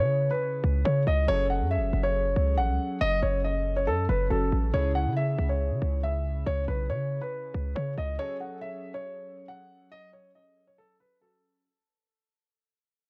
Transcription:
Already playing: C#3 C#4 E4 G#4
0.00 C#3 C#5
0.31 B4
0.64 C#2
0.85 C#3 C#5
1.07 C#2 D#5
1.27 F#1 F#3 C#4 G#4 A4 C#5
1.50 F#5
1.61 F#2
1.71 E5
1.77 F#1
1.93 F#1
2.03 C#5
2.36 C#2
2.58 A1 F#5
2.69 C#2
3.01 F#1 D#5
3.22 F#1 C#5
3.44 D#5
3.76 C#5
3.87 F#2 A4
4.09 F#1 B4
4.30 F#1 F#3 C#4 F#4 A4
4.52 A1
4.72 C#2 C#3 C#4 E4 G#4 C#5
4.95 F#5
5.06 C#3
5.17 E5
5.39 C#2
5.49 C#5
5.71 C#3
5.82 C#2
6.03 E5
6.46 C#2 C#5
6.68 B1 B4
6.90 C#3 C#5
7.22 B4
7.54 C#2
7.75 C#3 C#5
7.98 C#2 D#5
8.18 F#3 C#4 G#4 A4 C#5
8.40 F#5
8.61 E5
8.94 C#5
9.48 F#5
9.92 D#5
10.13 C#5
10.35 D#5
10.67 C#5
10.78 A4
11.00 B4
11.21 F#3 C#4 F#4 A4

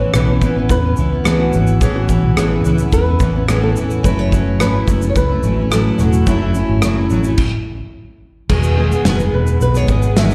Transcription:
Already playing: E3 B3 C#4 E4 C#5
0.13 B1 A2 E3 B3 C#4 E4 B4, cross-stick, shaker
0.27 B3 C#4 E4
0.41 A1 E3 B3 C#4 E4, kick, shaker
0.54 B3 C#4 E4
0.69 E2 B4, kick, shaker
0.81 B3 C#4 E4
0.96 C#2 E3 B3 C#4 E4, shaker
1.10 B3 C#4 E4
1.24 A2 E3 B3 C#4 E4 G#4, cross-stick, shaker
1.40 F#4
1.52 G#1 E3 B3 C#4 E4, shaker
1.67 shaker
1.81 A1 A2 E3 B3 C#4 E4 G#4, kick, shaker
1.96 F#4
2.08 E3 B3 C#4 E4, kick, shaker
2.23 B1
2.37 A1 A2 E3 B3 C#4 E4 G#4, cross-stick, shaker
2.50 B3 C#4 E4
2.64 C#2 E3 B3 C#4 E4, shaker
2.78 B3 C#4 E4, shaker
2.92 E2 B4, kick, shaker
3.05 B3 C#4 E4
3.19 A1 E3 B3 C#4 E4, kick, shaker
3.33 B3 C#4 E4
3.48 A2 E3 B3 C#4 E4 G#4, cross-stick, shaker
3.64 A4
3.75 E1 E3 B3 C#4 E4, shaker
3.90 shaker
4.03 F#1 F#3 A3 C#4 E4 B4, kick, shaker
4.19 C#5
4.31 F#3 A3 C#4 E4, kick, shaker
4.59 G#1 F#3 A3 C#4 E4 B4, cross-stick, shaker
4.73 A3 C#4 E4
4.86 F#1 F#3 A3 C#4 E4, kick, shaker
5.01 A3 C#4 E4, shaker
5.09 C#5
5.15 C#2 B4, kick, shaker
5.29 A3 C#4 E4
5.43 A1 F#3 A3 C#4 E4, shaker
5.57 A3 C#4 E4
5.70 F#3 A3 C#4 E4 A4, cross-stick, shaker
5.98 E1 F#3 A3 C#4 E4 F#4, cross-stick, shaker
6.13 shaker
6.26 F#1 F#3 A3 C#4 E4, kick, shaker
6.34 D#4
6.42 E4
6.54 F#3 A3 C#4 E4, shaker
6.69 G#1
6.82 F#1 F#3 A3 C#4 E4, cross-stick, shaker
6.96 A3 C#4 E4
7.10 A1 F#3 A3 C#4 E4, shaker
7.24 A3 C#4 E4, shaker
7.38 kick, crash
8.49 E1 E2 B2 D#3 G#3 B3 G#4, kick, crash
8.63 shaker
8.77 D#3 G#3 B3 G#4
8.90 D#3 G#3 B3 G#4, shaker
9.05 F#1 E2 B2 D#3 G#3 B3 G#4, snare, shaker
9.18 D#3 G#3 B3 G#4, shaker
9.33 E1 B4
9.47 shaker
9.61 B1 B4, shaker
9.74 D#3 G#3 B3 G#4 C#5, shaker
9.88 G#1 D#3 G#3 B3 G#4 D#5, kick, shaker
10.02 D#3 G#3 B3 G#4, shaker
10.17 E2 B2 D#3 G#3 B3 G#4 E5, snare, shaker
10.30 D#5, shaker

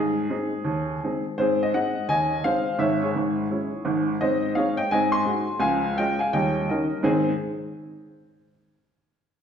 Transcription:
Already playing: G#2 G#4
0.30 G#3 C4 D#4
0.64 D#2
1.04 G#3 C4 D#4
1.38 G#2 C4 G#4 C5
1.63 D#5
1.74 G#3 C4 D#4 D#5 F#5
2.08 D#2 D#5 G#5
2.44 G#3 C4 D#4 C5 F5
2.79 G#1 G#2 C#5 E5
3.01 G#4 C#5
3.15 G#1 G#2
3.50 G#3 C#4 E4
3.85 G#1 G#2
4.21 G#2 C4 C5 D#5
4.55 G#3 C4 D#4 C#5 F5
4.77 D#5 G5
4.91 G#2 C4 D#5 G#5
5.12 G#5 C6
5.26 G#3 D#4 F#4
5.60 C#2 F3 F5 G#5
5.98 G#3 C#4 F4 D#5 G5
6.19 F5 G#5
6.33 D#2 G3 D#5 G5
6.70 D#3 C#4 D#4 A#4 D#5
7.03 G#2 D#3 C4 D#4 G#4 C5 G#5

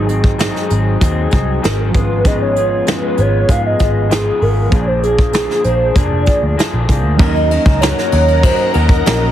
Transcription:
Already playing: G#1 F#3 C4 D#4 G#4
0.07 F#3 C4 D#4 G#4, closed hi-hat
0.24 kick
0.38 G#2 D#3 F#3 C4 D#4 G#4, snare, closed hi-hat
0.56 snare
0.68 G#1 F#3 C4 D#4 G#4, closed hi-hat
1.00 D#2 F#3 C4 D#4 G#4, kick, closed hi-hat
1.30 C2 F#3 C4 D#4 G#4, kick, closed hi-hat
1.62 G#1 G#2 D#3 F#3 C4 D#4 G#4 A#4, snare, closed hi-hat
1.90 F3 B3 F4 G#4
1.94 G#1 G#3 B3 C#4 G#4 B4, kick, closed hi-hat
2.24 G#2 C#3 G#3 B3 F4 G#4 D#5, kick, closed hi-hat
2.41 C#5
2.55 G#3 B3 F4 G#4, closed hi-hat
2.87 G#2 C#3 G#3 B3 F4 G#4 B4, snare, closed hi-hat
3.17 G#1 G#3 B3 F4 G#4 C#5, closed hi-hat
3.48 G#2 G#3 B3 F4 G#4 F5, kick, closed hi-hat
3.66 D#5
3.79 G#1 G#3 B3 F4 G#4, kick, closed hi-hat
4.10 G#2 C#3 G#3 B3 F4 G#4, snare, closed hi-hat
4.41 G#1 G#3 B3 F4 G#4 A#4, open hi-hat
4.69 A#1 A#2 D3 F3 A#3 D4, kick, closed hi-hat
4.73 A#3 D4 G#4 D5
4.87 C5
5.03 F3 A#3 D4 G#4, closed hi-hat
5.19 kick
5.33 A#2 D3 F3 A#3 D4 G#4, snare, closed hi-hat
5.51 snare
5.64 A#1 F3 A#3 D4 G#4 C5, closed hi-hat
5.95 F1 F3 A#3 D4 G#4 D5, kick, closed hi-hat
6.12 F1
6.26 F3 A#3 D4 G#4, kick, closed hi-hat
6.42 D2
6.57 A#2 D3 F3 A#3 D4 G#4, snare, closed hi-hat
6.73 A#1
6.88 C2 F3 A#3 D4 G#4, kick, closed hi-hat
7.04 D2
7.16 D#2 D#3 F#3 A#3 C#4 D#4 A#4 D#5 F#5 A#5, kick, ride
7.21 A#4
7.36 ride
7.50 C#4 D#4 A#4 D#5, ride
7.65 C#2, kick, ride
7.80 F#3 C#4 D#4 A#4 C#5, snare, ride
7.98 snare
8.12 D#2 C#4 D#4 A#4, ride
8.28 ride
8.43 D#3 F#3 C#4 D#4 A#4 C5, kick, ride
8.58 ride
8.73 D#2 D#4 A#4, ride
8.78 C#4
8.89 kick, ride
9.06 A#1 F#3 C#4 D#4 A#4, snare, ride
9.21 ride

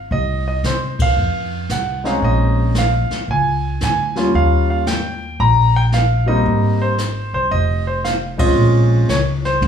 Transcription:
0.11 C2 D#5, brush sweep, kick
0.48 D#5
0.64 C3 C5, snare, hi-hat pedal
0.99 F5, kick, ride
1.16 F2, brush sweep
1.69 C2 F#5, snare, hi-hat pedal
2.04 G#3 C4 C#4 D#4 F5, snare
2.22 A#1 D#5, brush sweep, kick
2.75 F5, snare, hi-hat pedal
3.11 muted upright bass stroke, snare
3.28 C#2 G#5, brush sweep, kick
3.81 D2 G#5, snare, hi-hat pedal
4.16 G3 A#3 C#4 F4, snare
4.34 D#2 F5, brush sweep, kick
4.70 F5
4.87 G5, snare, hi-hat pedal
5.40 A#1 A#5, brush sweep, kick
5.76 G5
5.92 F5, snare, hi-hat pedal
6.26 G3 A#3 C4 D#4 D#5
6.45 G#1, brush sweep, kick
6.82 C5
6.98 snare, hi-hat pedal
7.33 C2 C5
7.51 F1 D#5, brush sweep, kick
7.87 C5
8.04 F5, snare, hi-hat pedal
8.38 G#3 C4 C#4 F4 D#5, kick, ride
8.56 A#1, brush sweep
9.09 C#2 C#5, snare, hi-hat pedal
9.45 C5, snare
9.61 D#2, high tom

